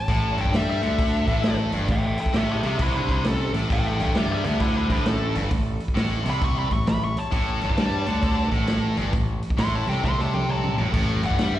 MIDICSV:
0, 0, Header, 1, 6, 480
1, 0, Start_track
1, 0, Tempo, 452489
1, 87, Time_signature, 4, 2, 24, 8
1, 12299, End_track
2, 0, Start_track
2, 0, Title_t, "Lead electric guitar"
2, 0, Program_c, 0, 29
2, 0, Note_on_c, 0, 81, 98
2, 397, Note_off_c, 0, 81, 0
2, 431, Note_on_c, 0, 79, 91
2, 593, Note_off_c, 0, 79, 0
2, 593, Note_on_c, 0, 76, 86
2, 735, Note_off_c, 0, 76, 0
2, 746, Note_on_c, 0, 76, 101
2, 1666, Note_off_c, 0, 76, 0
2, 2025, Note_on_c, 0, 76, 96
2, 2033, Note_on_c, 0, 79, 86
2, 2172, Note_off_c, 0, 79, 0
2, 2176, Note_off_c, 0, 76, 0
2, 2187, Note_on_c, 0, 76, 89
2, 2195, Note_on_c, 0, 79, 79
2, 2323, Note_off_c, 0, 76, 0
2, 2330, Note_off_c, 0, 79, 0
2, 2335, Note_on_c, 0, 76, 74
2, 2343, Note_on_c, 0, 79, 95
2, 2479, Note_off_c, 0, 76, 0
2, 2489, Note_off_c, 0, 79, 0
2, 2498, Note_on_c, 0, 67, 68
2, 2519, Note_on_c, 0, 76, 81
2, 2640, Note_off_c, 0, 67, 0
2, 2657, Note_off_c, 0, 76, 0
2, 2667, Note_on_c, 0, 67, 71
2, 2674, Note_on_c, 0, 76, 71
2, 2806, Note_off_c, 0, 67, 0
2, 2813, Note_off_c, 0, 76, 0
2, 2834, Note_on_c, 0, 67, 76
2, 2839, Note_on_c, 0, 76, 76
2, 2969, Note_off_c, 0, 67, 0
2, 2977, Note_off_c, 0, 76, 0
2, 2991, Note_on_c, 0, 64, 71
2, 2994, Note_on_c, 0, 72, 76
2, 3119, Note_off_c, 0, 64, 0
2, 3132, Note_on_c, 0, 64, 73
2, 3133, Note_off_c, 0, 72, 0
2, 3145, Note_on_c, 0, 72, 87
2, 3277, Note_off_c, 0, 64, 0
2, 3290, Note_off_c, 0, 72, 0
2, 3306, Note_on_c, 0, 64, 65
2, 3312, Note_on_c, 0, 72, 77
2, 3445, Note_off_c, 0, 64, 0
2, 3465, Note_off_c, 0, 72, 0
2, 3465, Note_on_c, 0, 69, 78
2, 3757, Note_off_c, 0, 69, 0
2, 3947, Note_on_c, 0, 76, 84
2, 3955, Note_on_c, 0, 79, 102
2, 4083, Note_off_c, 0, 76, 0
2, 4096, Note_off_c, 0, 79, 0
2, 4096, Note_on_c, 0, 76, 76
2, 4116, Note_on_c, 0, 79, 92
2, 4240, Note_off_c, 0, 76, 0
2, 4257, Note_off_c, 0, 79, 0
2, 4265, Note_on_c, 0, 76, 80
2, 4278, Note_on_c, 0, 79, 104
2, 4405, Note_off_c, 0, 76, 0
2, 4416, Note_on_c, 0, 67, 80
2, 4421, Note_off_c, 0, 79, 0
2, 4421, Note_on_c, 0, 76, 68
2, 4567, Note_off_c, 0, 76, 0
2, 4569, Note_off_c, 0, 67, 0
2, 4581, Note_on_c, 0, 67, 72
2, 4590, Note_on_c, 0, 76, 76
2, 4702, Note_off_c, 0, 67, 0
2, 4703, Note_off_c, 0, 76, 0
2, 4714, Note_on_c, 0, 67, 74
2, 4719, Note_on_c, 0, 76, 79
2, 4869, Note_off_c, 0, 67, 0
2, 4876, Note_off_c, 0, 76, 0
2, 4888, Note_on_c, 0, 64, 75
2, 4895, Note_on_c, 0, 72, 73
2, 5037, Note_off_c, 0, 64, 0
2, 5044, Note_off_c, 0, 72, 0
2, 5066, Note_on_c, 0, 64, 71
2, 5071, Note_on_c, 0, 72, 74
2, 5206, Note_off_c, 0, 64, 0
2, 5215, Note_off_c, 0, 72, 0
2, 5225, Note_on_c, 0, 64, 58
2, 5238, Note_on_c, 0, 72, 71
2, 5365, Note_off_c, 0, 64, 0
2, 5396, Note_off_c, 0, 72, 0
2, 5396, Note_on_c, 0, 69, 89
2, 5684, Note_off_c, 0, 69, 0
2, 6683, Note_on_c, 0, 83, 101
2, 6821, Note_off_c, 0, 83, 0
2, 6839, Note_on_c, 0, 85, 89
2, 6980, Note_off_c, 0, 85, 0
2, 6988, Note_on_c, 0, 83, 94
2, 7134, Note_off_c, 0, 83, 0
2, 7140, Note_on_c, 0, 85, 81
2, 7290, Note_off_c, 0, 85, 0
2, 7309, Note_on_c, 0, 83, 82
2, 7455, Note_off_c, 0, 83, 0
2, 7472, Note_on_c, 0, 85, 89
2, 7616, Note_off_c, 0, 85, 0
2, 7622, Note_on_c, 0, 81, 96
2, 9013, Note_off_c, 0, 81, 0
2, 10182, Note_on_c, 0, 84, 90
2, 10330, Note_off_c, 0, 84, 0
2, 10346, Note_on_c, 0, 81, 84
2, 10491, Note_off_c, 0, 81, 0
2, 10491, Note_on_c, 0, 79, 89
2, 10644, Note_off_c, 0, 79, 0
2, 10664, Note_on_c, 0, 84, 95
2, 10811, Note_off_c, 0, 84, 0
2, 10826, Note_on_c, 0, 81, 90
2, 10970, Note_off_c, 0, 81, 0
2, 10970, Note_on_c, 0, 79, 77
2, 11124, Note_off_c, 0, 79, 0
2, 11154, Note_on_c, 0, 81, 90
2, 11442, Note_off_c, 0, 81, 0
2, 11940, Note_on_c, 0, 78, 92
2, 12243, Note_off_c, 0, 78, 0
2, 12255, Note_on_c, 0, 76, 77
2, 12299, Note_off_c, 0, 76, 0
2, 12299, End_track
3, 0, Start_track
3, 0, Title_t, "Lead electric guitar"
3, 0, Program_c, 1, 29
3, 0, Note_on_c, 1, 73, 78
3, 389, Note_off_c, 1, 73, 0
3, 428, Note_on_c, 1, 69, 63
3, 566, Note_off_c, 1, 69, 0
3, 585, Note_on_c, 1, 69, 73
3, 724, Note_off_c, 1, 69, 0
3, 737, Note_on_c, 1, 69, 73
3, 1647, Note_off_c, 1, 69, 0
3, 2032, Note_on_c, 1, 69, 71
3, 2168, Note_off_c, 1, 69, 0
3, 2181, Note_on_c, 1, 69, 64
3, 2322, Note_off_c, 1, 69, 0
3, 2362, Note_on_c, 1, 69, 70
3, 2493, Note_off_c, 1, 69, 0
3, 2522, Note_on_c, 1, 69, 76
3, 2653, Note_off_c, 1, 69, 0
3, 2690, Note_on_c, 1, 68, 61
3, 2817, Note_off_c, 1, 68, 0
3, 2846, Note_on_c, 1, 68, 62
3, 2975, Note_off_c, 1, 68, 0
3, 3005, Note_on_c, 1, 64, 68
3, 3135, Note_off_c, 1, 64, 0
3, 3153, Note_on_c, 1, 62, 71
3, 3288, Note_off_c, 1, 62, 0
3, 3311, Note_on_c, 1, 62, 74
3, 3461, Note_off_c, 1, 62, 0
3, 3461, Note_on_c, 1, 61, 67
3, 3763, Note_off_c, 1, 61, 0
3, 3935, Note_on_c, 1, 69, 85
3, 4090, Note_off_c, 1, 69, 0
3, 4111, Note_on_c, 1, 69, 58
3, 4246, Note_off_c, 1, 69, 0
3, 4258, Note_on_c, 1, 69, 72
3, 4401, Note_off_c, 1, 69, 0
3, 4428, Note_on_c, 1, 69, 75
3, 4576, Note_off_c, 1, 69, 0
3, 4580, Note_on_c, 1, 68, 71
3, 4722, Note_off_c, 1, 68, 0
3, 4754, Note_on_c, 1, 68, 61
3, 4890, Note_off_c, 1, 68, 0
3, 4914, Note_on_c, 1, 64, 65
3, 5050, Note_off_c, 1, 64, 0
3, 5067, Note_on_c, 1, 62, 69
3, 5206, Note_off_c, 1, 62, 0
3, 5241, Note_on_c, 1, 62, 65
3, 5396, Note_off_c, 1, 62, 0
3, 5396, Note_on_c, 1, 61, 84
3, 5692, Note_off_c, 1, 61, 0
3, 6662, Note_on_c, 1, 74, 75
3, 6805, Note_off_c, 1, 74, 0
3, 6826, Note_on_c, 1, 76, 74
3, 6967, Note_off_c, 1, 76, 0
3, 6981, Note_on_c, 1, 74, 80
3, 7124, Note_off_c, 1, 74, 0
3, 7141, Note_on_c, 1, 76, 70
3, 7284, Note_off_c, 1, 76, 0
3, 7308, Note_on_c, 1, 76, 80
3, 7444, Note_off_c, 1, 76, 0
3, 7457, Note_on_c, 1, 76, 77
3, 7602, Note_off_c, 1, 76, 0
3, 7606, Note_on_c, 1, 73, 71
3, 9005, Note_off_c, 1, 73, 0
3, 10186, Note_on_c, 1, 76, 81
3, 10327, Note_off_c, 1, 76, 0
3, 10344, Note_on_c, 1, 73, 68
3, 10508, Note_off_c, 1, 73, 0
3, 10508, Note_on_c, 1, 69, 70
3, 10655, Note_on_c, 1, 76, 83
3, 10658, Note_off_c, 1, 69, 0
3, 10800, Note_off_c, 1, 76, 0
3, 10817, Note_on_c, 1, 73, 76
3, 10969, Note_off_c, 1, 73, 0
3, 10969, Note_on_c, 1, 69, 69
3, 11128, Note_off_c, 1, 69, 0
3, 11137, Note_on_c, 1, 73, 73
3, 11421, Note_off_c, 1, 73, 0
3, 12299, End_track
4, 0, Start_track
4, 0, Title_t, "Distorted electric guitar"
4, 0, Program_c, 2, 30
4, 92, Note_on_c, 2, 45, 96
4, 390, Note_off_c, 2, 45, 0
4, 391, Note_on_c, 2, 43, 91
4, 558, Note_off_c, 2, 43, 0
4, 563, Note_on_c, 2, 55, 84
4, 865, Note_off_c, 2, 55, 0
4, 874, Note_on_c, 2, 50, 87
4, 1345, Note_off_c, 2, 50, 0
4, 1360, Note_on_c, 2, 45, 90
4, 1828, Note_off_c, 2, 45, 0
4, 1833, Note_on_c, 2, 43, 88
4, 1998, Note_off_c, 2, 43, 0
4, 1998, Note_on_c, 2, 45, 71
4, 2249, Note_off_c, 2, 45, 0
4, 2470, Note_on_c, 2, 45, 85
4, 2778, Note_off_c, 2, 45, 0
4, 2788, Note_on_c, 2, 48, 87
4, 2947, Note_off_c, 2, 48, 0
4, 2960, Note_on_c, 2, 48, 99
4, 3744, Note_off_c, 2, 48, 0
4, 3751, Note_on_c, 2, 45, 89
4, 3906, Note_off_c, 2, 45, 0
4, 3918, Note_on_c, 2, 45, 95
4, 4223, Note_off_c, 2, 45, 0
4, 4224, Note_on_c, 2, 43, 93
4, 4394, Note_off_c, 2, 43, 0
4, 4399, Note_on_c, 2, 55, 89
4, 4704, Note_off_c, 2, 55, 0
4, 4719, Note_on_c, 2, 50, 95
4, 5182, Note_off_c, 2, 50, 0
4, 5186, Note_on_c, 2, 45, 101
4, 5660, Note_on_c, 2, 43, 92
4, 5663, Note_off_c, 2, 45, 0
4, 5833, Note_off_c, 2, 43, 0
4, 5836, Note_on_c, 2, 45, 64
4, 6091, Note_off_c, 2, 45, 0
4, 6305, Note_on_c, 2, 45, 83
4, 6618, Note_off_c, 2, 45, 0
4, 6626, Note_on_c, 2, 48, 91
4, 7103, Note_off_c, 2, 48, 0
4, 7107, Note_on_c, 2, 45, 74
4, 7249, Note_off_c, 2, 45, 0
4, 7281, Note_on_c, 2, 45, 61
4, 7534, Note_off_c, 2, 45, 0
4, 7756, Note_on_c, 2, 45, 106
4, 8063, Note_on_c, 2, 43, 81
4, 8064, Note_off_c, 2, 45, 0
4, 8236, Note_off_c, 2, 43, 0
4, 8240, Note_on_c, 2, 55, 79
4, 8546, Note_off_c, 2, 55, 0
4, 8559, Note_on_c, 2, 50, 90
4, 9024, Note_off_c, 2, 50, 0
4, 9028, Note_on_c, 2, 45, 91
4, 9504, Note_off_c, 2, 45, 0
4, 9512, Note_on_c, 2, 43, 92
4, 9680, Note_off_c, 2, 43, 0
4, 9681, Note_on_c, 2, 45, 69
4, 9933, Note_off_c, 2, 45, 0
4, 10159, Note_on_c, 2, 45, 95
4, 10465, Note_off_c, 2, 45, 0
4, 10476, Note_on_c, 2, 48, 86
4, 10642, Note_off_c, 2, 48, 0
4, 10657, Note_on_c, 2, 48, 105
4, 11432, Note_off_c, 2, 48, 0
4, 11436, Note_on_c, 2, 45, 86
4, 11585, Note_off_c, 2, 45, 0
4, 11598, Note_on_c, 2, 45, 92
4, 11903, Note_off_c, 2, 45, 0
4, 11921, Note_on_c, 2, 43, 88
4, 12083, Note_off_c, 2, 43, 0
4, 12084, Note_on_c, 2, 55, 88
4, 12299, Note_off_c, 2, 55, 0
4, 12299, End_track
5, 0, Start_track
5, 0, Title_t, "Picked electric bass"
5, 0, Program_c, 3, 34
5, 87, Note_on_c, 3, 33, 92
5, 375, Note_off_c, 3, 33, 0
5, 396, Note_on_c, 3, 31, 89
5, 549, Note_off_c, 3, 31, 0
5, 556, Note_on_c, 3, 43, 91
5, 849, Note_off_c, 3, 43, 0
5, 874, Note_on_c, 3, 38, 80
5, 1320, Note_off_c, 3, 38, 0
5, 1354, Note_on_c, 3, 33, 76
5, 1801, Note_off_c, 3, 33, 0
5, 1841, Note_on_c, 3, 31, 73
5, 1996, Note_off_c, 3, 31, 0
5, 2001, Note_on_c, 3, 33, 66
5, 2291, Note_off_c, 3, 33, 0
5, 2485, Note_on_c, 3, 33, 85
5, 2773, Note_off_c, 3, 33, 0
5, 2796, Note_on_c, 3, 36, 86
5, 2953, Note_off_c, 3, 36, 0
5, 2963, Note_on_c, 3, 36, 87
5, 3712, Note_off_c, 3, 36, 0
5, 3748, Note_on_c, 3, 33, 89
5, 3909, Note_off_c, 3, 33, 0
5, 3928, Note_on_c, 3, 33, 83
5, 4216, Note_off_c, 3, 33, 0
5, 4239, Note_on_c, 3, 31, 82
5, 4395, Note_off_c, 3, 31, 0
5, 4406, Note_on_c, 3, 43, 81
5, 4695, Note_off_c, 3, 43, 0
5, 4717, Note_on_c, 3, 38, 90
5, 5163, Note_off_c, 3, 38, 0
5, 5194, Note_on_c, 3, 33, 69
5, 5642, Note_off_c, 3, 33, 0
5, 5677, Note_on_c, 3, 31, 85
5, 5835, Note_off_c, 3, 31, 0
5, 5845, Note_on_c, 3, 33, 78
5, 6135, Note_off_c, 3, 33, 0
5, 6321, Note_on_c, 3, 33, 91
5, 6614, Note_off_c, 3, 33, 0
5, 6640, Note_on_c, 3, 36, 86
5, 7086, Note_off_c, 3, 36, 0
5, 7121, Note_on_c, 3, 33, 64
5, 7278, Note_off_c, 3, 33, 0
5, 7293, Note_on_c, 3, 33, 79
5, 7580, Note_off_c, 3, 33, 0
5, 7770, Note_on_c, 3, 33, 96
5, 8059, Note_off_c, 3, 33, 0
5, 8080, Note_on_c, 3, 31, 86
5, 8238, Note_off_c, 3, 31, 0
5, 8248, Note_on_c, 3, 43, 82
5, 8538, Note_off_c, 3, 43, 0
5, 8566, Note_on_c, 3, 38, 86
5, 9010, Note_off_c, 3, 38, 0
5, 9037, Note_on_c, 3, 33, 73
5, 9485, Note_off_c, 3, 33, 0
5, 9515, Note_on_c, 3, 31, 84
5, 9675, Note_off_c, 3, 31, 0
5, 9687, Note_on_c, 3, 33, 72
5, 9976, Note_off_c, 3, 33, 0
5, 10164, Note_on_c, 3, 33, 84
5, 10454, Note_off_c, 3, 33, 0
5, 10477, Note_on_c, 3, 36, 86
5, 10635, Note_off_c, 3, 36, 0
5, 10649, Note_on_c, 3, 36, 81
5, 11396, Note_off_c, 3, 36, 0
5, 11441, Note_on_c, 3, 33, 83
5, 11594, Note_off_c, 3, 33, 0
5, 11601, Note_on_c, 3, 33, 76
5, 11892, Note_off_c, 3, 33, 0
5, 11913, Note_on_c, 3, 31, 83
5, 12072, Note_off_c, 3, 31, 0
5, 12082, Note_on_c, 3, 43, 80
5, 12299, Note_off_c, 3, 43, 0
5, 12299, End_track
6, 0, Start_track
6, 0, Title_t, "Drums"
6, 84, Note_on_c, 9, 46, 62
6, 87, Note_on_c, 9, 36, 88
6, 190, Note_off_c, 9, 46, 0
6, 193, Note_off_c, 9, 36, 0
6, 399, Note_on_c, 9, 46, 42
6, 482, Note_on_c, 9, 36, 68
6, 505, Note_off_c, 9, 46, 0
6, 570, Note_on_c, 9, 46, 61
6, 576, Note_on_c, 9, 38, 101
6, 588, Note_off_c, 9, 36, 0
6, 676, Note_off_c, 9, 46, 0
6, 682, Note_off_c, 9, 38, 0
6, 877, Note_on_c, 9, 46, 41
6, 983, Note_off_c, 9, 46, 0
6, 1045, Note_on_c, 9, 36, 100
6, 1047, Note_on_c, 9, 46, 65
6, 1151, Note_off_c, 9, 36, 0
6, 1153, Note_off_c, 9, 46, 0
6, 1352, Note_on_c, 9, 46, 44
6, 1354, Note_on_c, 9, 36, 77
6, 1458, Note_off_c, 9, 46, 0
6, 1460, Note_off_c, 9, 36, 0
6, 1520, Note_on_c, 9, 46, 59
6, 1526, Note_on_c, 9, 38, 98
6, 1626, Note_off_c, 9, 46, 0
6, 1632, Note_off_c, 9, 38, 0
6, 1826, Note_on_c, 9, 46, 46
6, 1933, Note_off_c, 9, 46, 0
6, 1995, Note_on_c, 9, 46, 65
6, 2002, Note_on_c, 9, 36, 99
6, 2102, Note_off_c, 9, 46, 0
6, 2108, Note_off_c, 9, 36, 0
6, 2308, Note_on_c, 9, 46, 53
6, 2398, Note_on_c, 9, 36, 74
6, 2414, Note_off_c, 9, 46, 0
6, 2479, Note_on_c, 9, 46, 66
6, 2484, Note_on_c, 9, 38, 105
6, 2504, Note_off_c, 9, 36, 0
6, 2585, Note_off_c, 9, 46, 0
6, 2590, Note_off_c, 9, 38, 0
6, 2790, Note_on_c, 9, 46, 45
6, 2896, Note_off_c, 9, 46, 0
6, 2958, Note_on_c, 9, 46, 69
6, 2963, Note_on_c, 9, 36, 97
6, 3064, Note_off_c, 9, 46, 0
6, 3069, Note_off_c, 9, 36, 0
6, 3275, Note_on_c, 9, 36, 68
6, 3275, Note_on_c, 9, 46, 41
6, 3381, Note_off_c, 9, 36, 0
6, 3381, Note_off_c, 9, 46, 0
6, 3441, Note_on_c, 9, 46, 62
6, 3446, Note_on_c, 9, 38, 100
6, 3547, Note_off_c, 9, 46, 0
6, 3553, Note_off_c, 9, 38, 0
6, 3757, Note_on_c, 9, 46, 50
6, 3863, Note_off_c, 9, 46, 0
6, 3928, Note_on_c, 9, 36, 102
6, 3931, Note_on_c, 9, 46, 60
6, 4034, Note_off_c, 9, 36, 0
6, 4038, Note_off_c, 9, 46, 0
6, 4239, Note_on_c, 9, 46, 45
6, 4322, Note_on_c, 9, 36, 67
6, 4345, Note_off_c, 9, 46, 0
6, 4401, Note_on_c, 9, 46, 59
6, 4407, Note_on_c, 9, 38, 98
6, 4428, Note_off_c, 9, 36, 0
6, 4507, Note_off_c, 9, 46, 0
6, 4513, Note_off_c, 9, 38, 0
6, 4713, Note_on_c, 9, 46, 45
6, 4819, Note_off_c, 9, 46, 0
6, 4876, Note_on_c, 9, 46, 58
6, 4884, Note_on_c, 9, 36, 99
6, 4982, Note_off_c, 9, 46, 0
6, 4991, Note_off_c, 9, 36, 0
6, 5195, Note_on_c, 9, 46, 44
6, 5196, Note_on_c, 9, 36, 67
6, 5301, Note_off_c, 9, 46, 0
6, 5302, Note_off_c, 9, 36, 0
6, 5365, Note_on_c, 9, 46, 56
6, 5370, Note_on_c, 9, 38, 103
6, 5471, Note_off_c, 9, 46, 0
6, 5476, Note_off_c, 9, 38, 0
6, 5678, Note_on_c, 9, 46, 47
6, 5784, Note_off_c, 9, 46, 0
6, 5842, Note_on_c, 9, 46, 62
6, 5846, Note_on_c, 9, 36, 98
6, 5948, Note_off_c, 9, 46, 0
6, 5952, Note_off_c, 9, 36, 0
6, 6154, Note_on_c, 9, 46, 44
6, 6240, Note_on_c, 9, 36, 65
6, 6261, Note_off_c, 9, 46, 0
6, 6327, Note_on_c, 9, 46, 61
6, 6332, Note_on_c, 9, 38, 107
6, 6346, Note_off_c, 9, 36, 0
6, 6433, Note_off_c, 9, 46, 0
6, 6438, Note_off_c, 9, 38, 0
6, 6636, Note_on_c, 9, 46, 48
6, 6742, Note_off_c, 9, 46, 0
6, 6806, Note_on_c, 9, 46, 58
6, 6807, Note_on_c, 9, 36, 108
6, 6912, Note_off_c, 9, 46, 0
6, 6913, Note_off_c, 9, 36, 0
6, 7118, Note_on_c, 9, 36, 76
6, 7118, Note_on_c, 9, 46, 46
6, 7224, Note_off_c, 9, 36, 0
6, 7224, Note_off_c, 9, 46, 0
6, 7288, Note_on_c, 9, 46, 65
6, 7293, Note_on_c, 9, 38, 112
6, 7394, Note_off_c, 9, 46, 0
6, 7399, Note_off_c, 9, 38, 0
6, 7603, Note_on_c, 9, 46, 51
6, 7709, Note_off_c, 9, 46, 0
6, 7765, Note_on_c, 9, 46, 65
6, 7767, Note_on_c, 9, 36, 96
6, 7871, Note_off_c, 9, 46, 0
6, 7873, Note_off_c, 9, 36, 0
6, 8076, Note_on_c, 9, 46, 46
6, 8162, Note_on_c, 9, 36, 69
6, 8182, Note_off_c, 9, 46, 0
6, 8244, Note_on_c, 9, 46, 62
6, 8249, Note_on_c, 9, 38, 101
6, 8268, Note_off_c, 9, 36, 0
6, 8350, Note_off_c, 9, 46, 0
6, 8355, Note_off_c, 9, 38, 0
6, 8554, Note_on_c, 9, 46, 42
6, 8660, Note_off_c, 9, 46, 0
6, 8725, Note_on_c, 9, 46, 57
6, 8727, Note_on_c, 9, 36, 103
6, 8831, Note_off_c, 9, 46, 0
6, 8833, Note_off_c, 9, 36, 0
6, 9034, Note_on_c, 9, 46, 39
6, 9037, Note_on_c, 9, 36, 67
6, 9140, Note_off_c, 9, 46, 0
6, 9143, Note_off_c, 9, 36, 0
6, 9201, Note_on_c, 9, 46, 59
6, 9206, Note_on_c, 9, 38, 104
6, 9307, Note_off_c, 9, 46, 0
6, 9312, Note_off_c, 9, 38, 0
6, 9512, Note_on_c, 9, 46, 42
6, 9618, Note_off_c, 9, 46, 0
6, 9683, Note_on_c, 9, 46, 57
6, 9686, Note_on_c, 9, 36, 99
6, 9789, Note_off_c, 9, 46, 0
6, 9792, Note_off_c, 9, 36, 0
6, 9997, Note_on_c, 9, 46, 46
6, 10082, Note_on_c, 9, 36, 71
6, 10103, Note_off_c, 9, 46, 0
6, 10163, Note_on_c, 9, 46, 64
6, 10169, Note_on_c, 9, 38, 108
6, 10188, Note_off_c, 9, 36, 0
6, 10269, Note_off_c, 9, 46, 0
6, 10275, Note_off_c, 9, 38, 0
6, 10473, Note_on_c, 9, 46, 43
6, 10579, Note_off_c, 9, 46, 0
6, 10647, Note_on_c, 9, 36, 91
6, 10651, Note_on_c, 9, 38, 54
6, 10753, Note_off_c, 9, 36, 0
6, 10757, Note_off_c, 9, 38, 0
6, 10808, Note_on_c, 9, 38, 54
6, 10914, Note_off_c, 9, 38, 0
6, 10962, Note_on_c, 9, 48, 57
6, 11041, Note_off_c, 9, 48, 0
6, 11041, Note_on_c, 9, 48, 59
6, 11128, Note_on_c, 9, 47, 69
6, 11147, Note_off_c, 9, 48, 0
6, 11234, Note_off_c, 9, 47, 0
6, 11280, Note_on_c, 9, 45, 67
6, 11386, Note_off_c, 9, 45, 0
6, 11436, Note_on_c, 9, 43, 79
6, 11518, Note_off_c, 9, 43, 0
6, 11518, Note_on_c, 9, 43, 73
6, 11601, Note_on_c, 9, 49, 95
6, 11603, Note_on_c, 9, 36, 105
6, 11624, Note_off_c, 9, 43, 0
6, 11707, Note_off_c, 9, 49, 0
6, 11709, Note_off_c, 9, 36, 0
6, 11914, Note_on_c, 9, 46, 52
6, 11997, Note_on_c, 9, 36, 67
6, 12020, Note_off_c, 9, 46, 0
6, 12080, Note_on_c, 9, 46, 71
6, 12085, Note_on_c, 9, 38, 109
6, 12103, Note_off_c, 9, 36, 0
6, 12186, Note_off_c, 9, 46, 0
6, 12191, Note_off_c, 9, 38, 0
6, 12299, End_track
0, 0, End_of_file